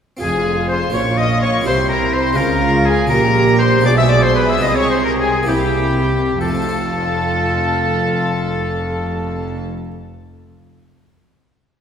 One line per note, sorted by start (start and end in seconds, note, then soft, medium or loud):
0.17 0.90 C4 soft
0.17 0.90 F4 soft
0.17 0.91 G#4 soft
0.21 0.91 F1 medium
0.21 0.90 F2 medium
0.21 0.91 F4 medium
0.21 0.67 G#4 medium
0.21 0.67 G#5 medium
0.69 0.80 C5 medium
0.69 0.95 C5 medium
0.69 0.94 C6 medium
0.90 1.62 C#4 medium
0.90 1.63 F4 medium
0.90 1.63 A#4 medium
0.90 1.19 C#5 medium
0.90 1.02 C#5 medium
0.94 1.65 A#1 medium
0.94 1.65 A#2 medium
0.94 1.62 A#2 medium
0.94 1.65 F4 medium
0.94 1.18 C#6 medium
1.18 1.41 D#5 medium
1.18 1.42 D#5 medium
1.18 1.42 D#6 loud
1.42 1.66 C#5 medium
1.42 1.51 C#5 medium
1.42 1.66 C#6 loud
1.61 2.33 C4 medium
1.61 2.34 E4 medium
1.61 2.35 G4 medium
1.66 2.37 C2 medium
1.66 2.34 C3 medium
1.66 2.37 C3 medium
1.66 2.38 E4 medium
1.66 1.88 C5 medium
1.66 1.75 C5 medium
1.66 1.90 C6 loud
1.89 2.15 A#4 medium
1.89 2.14 A#4 medium
1.89 2.14 A#5 medium
2.13 2.38 C5 medium
2.13 2.39 C5 medium
2.13 2.37 C6 medium
2.33 3.05 G#3 medium
2.33 3.06 C#4 medium
2.33 3.07 F4 medium
2.33 2.87 A#4 medium
2.37 3.10 C#2 medium
2.37 3.06 C#3 medium
2.37 3.10 C#3 medium
2.37 3.09 F4 medium
2.37 2.86 A#4 medium
2.37 2.86 A#5 medium
2.85 3.08 G#4 medium
2.85 3.11 G#4 medium
2.85 3.10 G#5 loud
3.07 3.83 A#1 medium
3.07 3.80 A#2 medium
3.07 3.83 A#2 medium
3.07 3.81 C#4 medium
3.07 3.81 F4 medium
3.07 3.83 G4 medium
3.07 3.58 A#4 loud
3.07 3.58 A#5 loud
3.12 3.59 A#4 medium
3.59 3.84 C5 medium
3.59 3.85 C5 medium
3.59 3.85 C6 loud
3.79 4.57 G#3 medium
3.79 4.59 D4 medium
3.79 4.59 F4 medium
3.84 4.61 B1 medium
3.84 4.58 B2 medium
3.84 4.61 B2 medium
3.84 5.44 G#4 medium
3.84 3.97 D5 medium
3.84 3.98 D5 medium
3.84 3.90 D6 loud
3.97 4.03 E5 medium
3.97 4.10 E5 medium
3.97 4.11 E6 loud
4.10 4.23 D5 medium
4.10 4.25 D5 loud
4.10 4.23 D6 loud
4.23 4.36 C5 medium
4.23 4.35 C5 medium
4.23 4.37 C6 loud
4.35 4.49 B4 medium
4.35 4.50 B5 loud
4.49 4.63 E5 medium
4.49 4.61 E5 medium
4.49 4.64 E6 loud
4.58 5.43 C3 medium
4.58 5.42 G#3 medium
4.58 5.43 C4 medium
4.58 5.44 F4 medium
4.58 4.77 D#5 medium
4.63 5.46 C2 medium
4.63 5.46 C3 medium
4.63 4.76 D#5 medium
4.63 4.77 D#6 medium
4.76 4.90 C#5 medium
4.76 4.89 C#5 medium
4.76 4.91 C#6 loud
4.90 4.95 C5 medium
4.90 5.04 C5 medium
4.90 5.05 C6 loud
5.04 5.18 A#4 medium
5.04 5.11 A#4 medium
5.04 5.12 A#5 medium
5.18 5.46 G#4 medium
5.18 5.50 G#4 medium
5.18 5.47 G#5 medium
5.43 6.35 A#3 medium
5.43 6.36 C4 medium
5.43 6.37 E4 medium
5.47 6.39 C2 medium
5.47 6.39 C3 medium
5.47 6.37 C3 medium
5.47 6.13 E4 medium
5.47 6.39 G4 medium
5.47 6.40 G4 medium
5.47 6.39 G5 medium
6.40 9.63 F1 medium
6.40 9.63 F2 medium
6.40 9.63 F3 medium
6.40 9.63 F4 medium
6.40 9.62 A4 medium
6.40 9.63 A4 medium
6.40 9.63 A5 medium
6.48 9.70 A3 medium
6.55 9.77 C4 medium
6.62 9.84 F4 medium
6.69 9.91 C5 medium